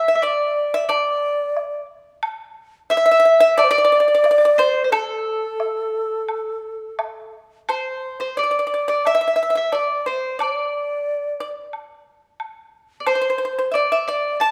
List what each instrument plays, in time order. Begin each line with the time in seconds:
Already playing: mandolin E5, xiao E5
0.08 pipa E5
0.15 mandolin E5
0.22 xiao D5, mandolin D5, pipa D5
0.74 pipa E5
0.89 xiao D5, mandolin D5, pipa D5, high woodblock
1.57 low woodblock
2.23 high woodblock
2.90 pipa E5, xiao E5, mandolin E5
2.97 pipa E5
3.06 pipa E5
3.11 pipa E5
3.20 pipa E5
3.25 pipa E5
3.40 pipa E5
3.58 pipa D5, xiao D5, mandolin D5, high woodblock
3.64 xiao C5
3.70 xiao D5, pipa D5, mandolin D5
3.78 pipa D5
3.85 pipa D5
3.92 pipa D5
4.00 pipa D5
4.08 pipa D5
4.15 pipa D5
4.24 pipa D5, low woodblock
4.31 pipa D5
4.38 pipa D5
4.45 pipa D5
4.58 mandolin C5, pipa C5
4.84 mandolin C5, xiao C5
4.91 xiao A4, mandolin A4, pipa A4, high woodblock
5.60 low woodblock
6.29 high woodblock
6.99 high woodblock, low woodblock
7.69 mandolin C5, pipa C5, xiao C5, high woodblock
8.20 pipa C5, mandolin C5
8.37 pipa D5, xiao D5, mandolin D5
8.44 pipa D5
8.51 pipa D5
8.59 pipa D5
8.67 pipa D5
8.74 pipa D5
8.88 pipa D5, mandolin D5
9.05 xiao E5, mandolin E5, pipa E5, high woodblock
9.15 pipa E5
9.21 pipa E5
9.28 pipa E5
9.36 pipa E5
9.43 pipa E5
9.50 pipa E5
9.55 pipa E5, mandolin E5
9.72 pipa D5, xiao D5, mandolin D5, high woodblock
9.99 xiao D5
10.06 pipa C5, xiao C5, mandolin C5
10.39 pipa D5, mandolin D5, xiao D5, high woodblock
11.40 pipa D5
11.73 high woodblock
12.40 high woodblock
13.00 mandolin D5
13.06 pipa C5, mandolin C5, xiao C5, high woodblock
13.15 pipa C5
13.21 pipa C5
13.30 pipa C5
13.38 pipa C5
13.45 pipa C5
13.59 pipa C5
13.71 mandolin D5, pipa D5 E5, xiao D5
13.92 pipa E5, xiao E5
14.08 mandolin D5, pipa D5, xiao D5
14.40 mandolin A5, pipa A5, xiao A5, high woodblock